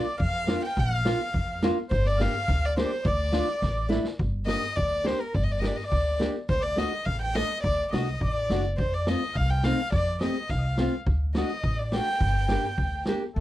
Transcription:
Already playing: D5
0.18 F2 F5, kick
0.47 A#3 D4 F4, snare
0.65 G5
0.76 A#1 F5, kick
1.05 A#3 D4 F4, snare
1.34 F2, kick
1.62 A#3 D4 F4, snare
1.89 G1 C5, kick
2.05 D5, snare
2.18 A#3 D4 G4 F5, snare
2.48 D2, kick, snare
2.65 D5
2.76 A#3 D4 G4 C5, snare
2.84 D5
2.90 C5
3.03 D2 D5, kick
3.32 A3 D4 F4, snare
3.62 A1, kick, snare
3.89 A3 D4 E4, snare
4.05 snare
4.19 G1, kick
4.46 A#3 D4 G4 D#5, snare
4.76 D2 D5, kick
5.04 A#3 D4 G4 C5, snare
5.19 A#4
5.34 G1 D5, kick
5.43 D#5
5.51 D5
5.59 A#3 D4 G4 D#5
5.64 D5, snare
5.76 D#5, snare
5.84 D5
5.92 D2, kick
6.19 A#3 D4 G4, snare
6.49 D2 C5, kick
6.60 D5
6.76 A3 D4 F#4 D#5, snare
7.05 A1 F5, kick
7.20 G5
7.34 A3 D4 A4 D#5, snare
7.63 D2 D5, kick
7.91 C2 A3 D4 F#4 D#5, snare
8.21 A1 D5 D#5, kick
8.32 D5
8.50 F#1 A3 D4 F#4, snare
8.78 F2 C5, kick
8.94 D5
9.07 A3 C4 F4 D#5, snare
9.23 snare
9.34 C2 F5, kick
9.50 G5
9.62 A3 C4 D#4 F5, snare
9.92 F2 D5, kick
10.20 A3 C4 G4 D#5, snare
10.49 C2 F5, kick, snare
10.58 D#5
10.66 F5
10.77 A3 C4 F4, snare
11.07 D2, kick
11.35 A3 D4 F#4 D#5, snare
11.64 A1, kick
11.79 D5
11.92 A3 D4 F#4 G5, snare
12.21 G1, kick
12.48 A#3 D4 G4, snare
12.78 D2, kick
13.05 A#3 D4 G4, snare
13.35 D2 A3

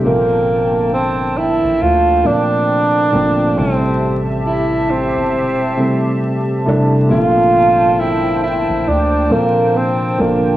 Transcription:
Already playing: C5
0.03 G1 A#2 D3 F3 A#3 C4 A4 G5 A5
0.94 C4
1.38 E4
1.63 A1
1.82 D2 F4
2.23 A#2 D3 F3 A3 C4 D4
3.12 G1 A#2 D3 F3 A3 C4
3.56 A1 C3 E3 G3 A3 C4 G4 E5 A5
4.46 E4
4.90 C4
5.16 G1
5.34 E1
5.77 C3 E3 G3 A3 C4
6.66 F1 C3 E3 G3 A3 D4
7.09 G1 A#2 D3 F3 A3 C4 F4 C5 G5 A5
7.99 E4
8.43 E4
8.69 A1
8.88 D2 D4
9.29 A#2 D3 F3 A#3 C4 A4
9.77 C4
10.18 G1 A#2 D3 F3 A#3 D4 A4

